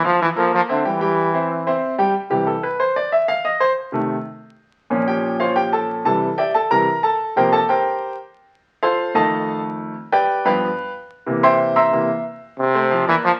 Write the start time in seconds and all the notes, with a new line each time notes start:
0.04 F3 F4 F5
0.22 E3
0.36 F3 A#3 A4 A#4
0.54 F3
0.69 D3 C4 C5 E5
0.85 E3 G3 G4 G5
1.01 G3 G4 G5
1.34 C4 C5 E5
1.67 C4 C5 E5
1.98 G3 G4 G5
2.30 C3 E3 G3 G4
2.47 A4
2.63 B4
2.80 C5
2.96 D5
3.12 E5
3.28 F5
3.45 D#5
3.60 C5
3.92 C3 D#3 A3
4.90 A#2 F3 C#4
5.08 G4 G5
5.40 F4 C5 C#5 F5
5.56 G4 G5
5.73 A4 A5
6.05 C3 E3 G3 A4 A5
6.38 G4 D5 E5 G5
6.54 A4 A5
6.71 C3 E3 G3 A#4 A#5
7.03 A4 A5
7.36 C3 F3 A#3 G4 A#4 C5 G5
7.52 A4 A5
7.69 G4 A#4 C5 G5
8.83 F4 A4 C5 F5
9.14 F2 D#3 A3 A4 D#5 F5 A5
10.12 G4 B4 D5 G5
10.45 G2 F3 B3 B4 F5 G5 B5
11.26 C3 E3 A#3
11.43 C5 E5 G5 C6
11.76 E5 A#5 C6 E6
11.92 C3 E3 A#3
12.59 C3
12.75 A3 A4 C5
12.91 F3 F4 F5
13.07 E3 A#3 A#4 D5
13.25 F3